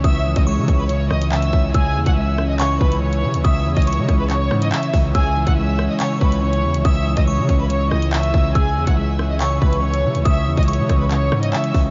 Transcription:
<<
  \new Staff \with { instrumentName = "Synth bell" } { \time 4/4 \key cis \minor \tempo 4 = 141 dis'''4 cis'''2. | e'''4 r4 cis'''4 r4 | dis'''4 cis'''2. | e'''4 r4 cis'''4 r4 |
dis'''4 cis'''2. | e'''4 r4 cis'''4 r4 | dis'''4 cis'''2. | }
  \new Staff \with { instrumentName = "Violin section" } { \time 4/4 \key cis \minor <e'' e'''>8. <dis'' dis'''>16 <cis'' cis'''>8. <b' b''>16 <cis'' cis'''>8 <dis'' dis'''>8 <e'' e'''>4 | <gis' gis''>8. <fis'' fis'''>16 <e'' e'''>8. <dis'' dis'''>16 <cis'' cis'''>8 <b' b''>8 <cis'' cis'''>4 | <e'' e'''>8. <dis'' dis'''>16 <cis'' cis'''>8. <b' b''>16 <cis'' cis'''>8. <dis'' dis'''>16 <e'' e'''>8 r8 | <gis' gis''>8. <fis'' fis'''>16 <e'' e'''>8. <dis'' dis'''>16 <cis'' cis'''>8 <b' b''>8 <cis'' cis'''>4 |
<e'' e'''>8. <dis'' dis'''>16 <cis'' cis'''>8. <b' b''>16 <cis'' cis'''>8 <dis'' dis'''>8 <e'' e'''>4 | <gis' gis''>8. <fis'' fis'''>16 <e'' e'''>8. <dis'' dis'''>16 <cis'' cis'''>8 <b' b''>8 <cis'' cis'''>4 | <e'' e'''>8. <dis'' dis'''>16 <cis'' cis'''>8. <b' b''>16 <cis'' cis'''>8. <dis'' dis'''>16 <e'' e'''>8 r8 | }
  \new Staff \with { instrumentName = "Ambient pad" } { \time 4/4 \key cis \minor << { cis''1 | cis''1~ | cis''1~ | cis''1~ |
cis''1 | cis''1~ | cis''1 | } \\ { <cis gis e'>1~ | <cis gis e'>1~ | <cis gis e'>1~ | <cis gis e'>1~ |
<cis gis e'>1 | <cis gis e'>1~ | <cis gis e'>1 | } >> }
  \new Staff \with { instrumentName = "Clean electric guitar" } { \clef bass \time 4/4 \key cis \minor <cis e>8 e8 gis8 cis'8 cis8 e8 cis8 cis8 | cis8 e8 gis8 cis'8 cis8 e8 cis8 cis8 | cis8 e8 gis8 cis'8 cis8 e8 cis8 cis8 | cis8 e8 gis8 cis'8 cis8 e8 cis8 cis8 |
cis8 e8 gis8 cis'8 cis8 e8 cis8 cis8 | cis8 e8 gis8 cis'8 cis8 e8 cis8 cis8 | cis8 e8 gis8 cis'8 cis8 e8 cis8 cis8 | }
  \new Staff \with { instrumentName = "808-style bass" } { \clef bass \time 4/4 \key cis \minor cis,8. cis,8 cis16 cis,4 cis,4 cis,8 | cis,8 e,16 cis,4.~ cis,16 cis,4 cis16 cis,16 | cis,8 e,16 cis,8 cis16 cis,4 gis,8 r8 cis,8 | cis,8. cis,4 r8. cis,4 e,16 cis,16 |
cis,8. cis,8 cis16 cis,4 cis,4 cis,8 | cis,8 e,16 cis,4.~ cis,16 cis,4 cis16 cis,16 | cis,8 e,16 cis,8 cis16 cis,4 gis,8 r8 cis,8 | }
  \new DrumStaff \with { instrumentName = "Drums" } \drummode { \time 4/4 <hh bd>8. <hh bd>16 r8 <hh bd>8 hh8 ss16 hh16 hc16 hh16 bd8 | <hh bd>8. <hh bd>16 r8 ss8 <hc hh>8 bd16 hh16 r16 hh8 hh16 | <hh bd>8. <hh bd>32 hh32 hh32 hh16. <hh bd ss>8 <hc hh>8 ss16 hh16 hc16 hh16 <hho bd>8 | <hh bd>8. <hh bd>16 r8 ss8 <hc hh>8 bd16 hh16 r16 hh8 hh16 |
<hh bd>8. <hh bd>16 r8 <hh bd>8 hh8 ss16 hh16 hc16 hh16 bd8 | <hh bd>8. <hh bd>16 r8 ss8 <hc hh>8 bd16 hh16 r16 hh8 hh16 | <hh bd>8. <hh bd>32 hh32 hh32 hh16. <hh bd ss>8 <hc hh>8 ss16 hh16 hc16 hh16 <hho bd>8 | }
>>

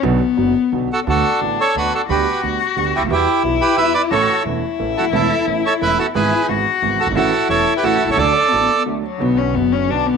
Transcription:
<<
  \new Staff \with { instrumentName = "Bandoneon" } { \time 3/4 \key b \minor \tempo 4 = 177 r2 r8 <fis' a'>8 | \key d \major <fis' a'>4 r8 <a' cis''>8 <fis' b'>8 <fis' a'>8 | <g' b'>4 r4. <e' g'>8 | <e' g'>4 r8 <g' b'>8 <b' e''>8 <b' d''>8 |
<a' cis''>4 r4. <fis' a'>8 | <e' a'>4 r8 <a' cis''>8 <e' b'>8 <fis' a'>8 | <gis' b'>4 r4. <fis' a'>8 | <fis' a'>4 <a' cis''>8. <g' b'>16 <fis' a'>8. <a' cis''>16 |
<a' d''>2 r4 | \key b \minor r2. | }
  \new Staff \with { instrumentName = "Cello" } { \time 3/4 \key b \minor b2~ b8 r8 | \key d \major d'2. | fis'2. | e'2. |
fis'4 e'2~ | e'2. | e'4 fis'2 | e'2. |
d'4 b4 a8 fis8 | \key b \minor b8 cis'8 b8 cis'8 d'8 b8 | }
  \new Staff \with { instrumentName = "Grand piano" } { \clef bass \time 3/4 \key b \minor <b,, b, d fis b fis'>8 r8 <fis,, fis, d fis b fis'>8 r8 <b,, b, d fis b fis'>8 r8 | \key d \major <d, d a b fis'>8 r8 <a,, a, d a b fis'>8 r8 <d, d a b fis'>8 r8 | <d, d g b g'>8 r8 <d, d g b g'>8 r8 <d, d g b g'>8 r32 cis,32 d,32 ees,32 | <e, e g b fis'>8 r8 <b,, b, e g b fis'>8 r8 <e, e g b fis'>8 r8 |
<a,, a, e a cis' a'>8 r8 <e,, e, e a cis' a'>8 r8 <a,, a, e a cis' a'>8 r32 cis,,32 d,,32 ees,,32 | <e,, e, e a cis' a'>8 r8 <a,, a, e a cis' a'>8 r8 <e,, e, e a cis' a'>8 r8 | <gis,, gis, e gis b gis'>8 r8 <gis,, gis, e gis b gis'>8 r8 <gis,, gis, e gis b gis'>8 r32 fis,,32 g,,32 gis,,32 | <a,, a, e a cis' fis'>8 r8 <e,, e, e a cis' fis'>8 r8 <a,, a, e a cis' fis'>8 r32 b,,32 c,32 cis,32 |
<d, d fis a d' a'>8 r8 <a,, a, fis a d' a'>8 r8 <d, d fis a d' a'>8 r8 | \key b \minor <b,, b, d fis b fis'>4 <fis,, fis, d fis b fis'>4 <b,, b, d fis b fis'>4 | }
  \new Staff \with { instrumentName = "Upright bass" } { \clef bass \time 3/4 \key b \minor b,,16. r8 r32 fis,,16. r8 r32 b,,16. r8 r32 | \key d \major d,16. r8 r32 a,,16. r8 r32 d,16. r8 r32 | d,16. r8 r32 d,16. r8 r32 d,16. r16 cis,32 d,32 ees,32 | e,16. r8 r32 b,,16. r8 r32 e,16. r8 r32 |
a,,16. r8 r32 e,,16. r8 r32 a,,16. r8 r32 | e,,16. r8 r32 a,,16. r8 r32 e,,16. r8 r32 | gis,,16. r8 r32 gis,,16. r8 r32 gis,,16. r16 fis,,32 g,,32 gis,,32 | a,,16. r8 r32 e,,16. r8 r32 a,,16. r16 b,,32 c,32 cis,32 |
d,16. r8 r32 a,,16. r4. r32 | \key b \minor b,,4 fis,,4 b,,4 | }
>>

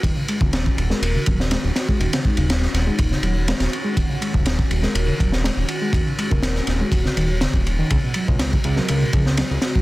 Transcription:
<<
  \new Staff \with { instrumentName = "Vibraphone" } { \time 4/4 \key ees \minor \tempo 4 = 122 r4. r16 bes'16 bes'16 r4 r16 ges'16 r16 | r8 ees'16 r4 ees'4 r4 r16 | r4. r16 bes'16 bes'16 r4 r16 ges'16 ges'16 | r8. bes'16 bes'16 r8 ges'4 r4 r16 |
r4. r16 bes'16 bes'16 r4 r16 ges'16 ges'16 | }
  \new Staff \with { instrumentName = "Analog synth pad" } { \clef bass \time 4/4 \key ees \minor << { ges'1~ | ges'1~ | ges'1~ | ges'1~ |
ges'1 | } \\ { <ees des'>1~ | <ees des'>1~ | <ees des'>1~ | <ees des'>1 |
<des aes>1 | } >> }
  \new Staff \with { instrumentName = "Reed electric piano" } { \clef bass \time 4/4 \key ees \minor ees16 des16 aes16 des16 r8. aes16 r16 des16 ges16 r16 aes16 r8 aes16 | ees16 des16 aes16 des16 r8. aes16 r16 des16 ges16 r16 aes16 r8 aes16 | ees16 des16 aes16 des16 r8. aes16 r16 des16 ges16 r16 aes16 r8 aes16 | ees16 des16 aes16 des16 r8. aes16 r16 des16 ees16 r16 des16 r8 ees16 |
des16 ces16 ges16 ces16 r8. ges16 r16 ces16 f16 r16 ges16 r8 ges16 | }
  \new Staff \with { instrumentName = "Analog synth bass" } { \clef bass \time 4/4 \key ees \minor ees,,16 r8 ees,,8 r16 ees,,16 r16 ees,,16 r16 ees,,8 r16 ees,,16 r8 | ees,,16 r8 ees,,8 r16 ees,,16 r16 ees,,16 r16 ees,,8 r16 ees,,16 r8 | ees,,16 r8 ees,,8 r16 ees,,16 r16 ees,,16 r16 ees,,8 r16 ees,,16 r8 | ees,,16 r8 ees,,8 r16 ees,,16 r16 ees,,16 r16 ees,,8 r16 ees,,8 r16 |
des,16 r8 des,8 r16 des,16 r16 des,16 r16 des,8 r16 des,16 r8 | }
  \new DrumStaff \with { instrumentName = "Drums" } \drummode { \time 4/4 <bd cymr>8 cymr16 bd16 <cymr sn>16 bd16 cymr16 sn16 cymr8 <bd cymr>16 sn16 <cymr sn>8 <cymr sn>16 bd16 | cymr16 <cymr sn>16 bd16 cymr16 <cymr sn>16 sn16 <cymr sn>8 <bd cymr>16 sn16 cymr8 <cymr sn>16 <cymr sn>16 cymr8 | <bd cymr>8 cymr16 bd16 <cymr sn>16 bd16 cymr16 sn16 cymr8 <bd cymr>16 sn16 <cymr sn>8 cymr8 | <bd cymr>8 cymr16 bd16 <cymr sn>16 sn16 <cymr sn>8 <bd cymr>16 sn16 cymr8 <cymr sn>16 bd16 cymr8 |
<bd cymr>8 cymr16 bd16 <cymr sn>16 bd16 cymr16 sn16 cymr8 <bd cymr>16 sn16 <cymr sn>8 <cymr sn>16 bd16 | }
>>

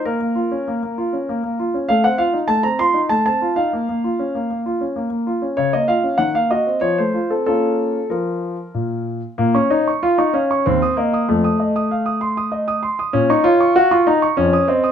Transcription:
\new Staff \with { instrumentName = "Grand piano" } { \time 3/4 \key bes \minor \tempo 4 = 97 << { bes'2~ bes'8 r8 | f''16 ges''16 f''8 a''16 bes''16 c'''8 a''16 a''8 f''16~ | f''2~ f''8 r8 | des''16 ees''16 f''8 ges''16 f''16 ees''8 des''16 c''8 a'16 |
a'4 bes'4. r8 | bes16 des'16 ees'8 f'16 ees'16 des'8 c'8 bes8 | a2~ a8 r8 | des'16 ees'16 f'8 ges'16 f'16 ees'8 des'8 c'8 | } \\ { bes16 bes16 f'16 des'16 bes16 bes16 f'16 des'16 bes16 bes16 f'16 des'16 | a16 c'16 f'16 ees'16 a16 c'16 f'16 ees'16 a16 c'16 f'16 ees'16 | bes16 bes16 f'16 des'16 bes16 bes16 f'16 des'16 bes16 bes16 f'16 des'16 | des16 bes16 f'16 des'16 ees16 bes16 ges'16 c'16 f16 a16 f'16 c'16 |
<bes des' f'>4 f4 bes,4 | bes,16 des'''16 des''16 des'''16 f''16 des'''16 f''16 des'''16 ees,16 ees'''16 ees''16 ees'''16 | f,16 ees'''16 ees''16 ees'''16 f''16 ees'''16 c'''16 ees'''16 ees''16 ees'''16 c'''16 ees'''16 | bes,16 des'''16 des''16 des'''16 f''16 des'''16 bes''16 des'''16 f,16 ees'''16 ees''16 ees'''16 | } >> }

